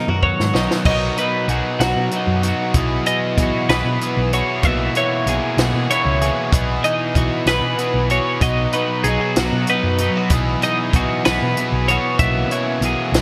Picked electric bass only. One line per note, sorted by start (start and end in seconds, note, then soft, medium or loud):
0.08 0.31 F#2 medium
0.40 0.51 G#2 medium
0.55 0.66 B1 medium
0.85 1.09 B1 medium
1.48 1.60 B1 medium
1.80 1.92 B1 loud
1.96 2.08 B2 medium
2.27 2.51 F#2 loud
2.75 2.99 B1 loud
3.37 3.49 B1 medium
3.69 3.81 B1 loud
3.85 3.97 B2 loud
4.17 4.41 B1 loud
4.63 4.87 B1 medium
5.26 5.39 B1 medium
5.57 5.70 B1 loud
5.74 5.86 B2 medium
6.05 6.29 C#2 loud
6.52 6.77 B1 medium
7.15 7.27 B1 medium
7.46 7.59 B1 loud
7.61 7.74 B2 medium
7.94 8.18 B1 medium
8.41 8.65 B1 medium
9.04 9.16 B1 medium
9.37 9.49 B1 loud
9.52 9.64 B2 medium
9.84 10.07 F#2 medium
10.30 10.54 B1 medium
10.94 11.06 B1 medium
11.26 11.38 B1 loud
11.42 11.54 B2 medium
11.72 11.96 B1 loud
12.19 12.43 B1 loud
12.81 12.94 B1 medium
13.12 13.21 B1 loud